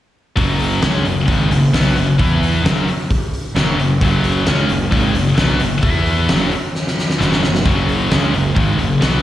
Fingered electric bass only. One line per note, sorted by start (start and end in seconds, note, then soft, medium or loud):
0.37 0.79 F#1 medium
0.83 1.04 C#2 loud
1.05 1.26 F#1 medium
1.28 1.49 G#1 medium
1.51 1.72 F#1 medium
1.74 1.95 B1 medium
1.96 2.17 F#1 medium
2.20 2.62 E2 medium
2.64 2.85 F#1 loud
3.56 3.77 F#1 loud
3.78 3.99 F#1 medium
4.02 4.44 F#1 medium
4.47 4.68 C#2 loud
4.70 4.91 F#1 medium
4.92 5.13 G#1 medium
5.15 5.36 F#1 medium
5.38 5.59 B1 medium
5.60 5.82 F#1 medium
5.83 6.25 E2 medium
6.29 6.50 F#1 medium
7.20 7.41 F#1 medium
7.43 7.64 F#1 medium
7.66 8.08 F#1 medium
8.12 8.32 C#2 loud
8.33 8.55 F#1 medium
8.56 8.78 G#1 medium
8.79 9.00 F#1 medium
9.02 9.22 B1 loud